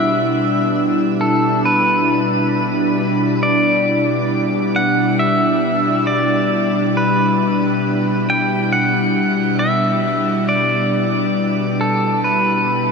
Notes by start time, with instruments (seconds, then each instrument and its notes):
Already playing: analog synth pad B2 G3 D4 E4, pedal steel guitar E5
1.21 pedal steel guitar A4
1.65 pedal steel guitar B4
3.43 pedal steel guitar D5
4.76 pedal steel guitar F#5
5.19 pedal steel guitar E5
6.07 pedal steel guitar D5
6.97 pedal steel guitar B4
8.30 pedal steel guitar G5
8.72 pedal steel guitar F#5
9.59 pedal steel guitar E5
10.49 pedal steel guitar D5
11.81 pedal steel guitar A4
12.24 pedal steel guitar B4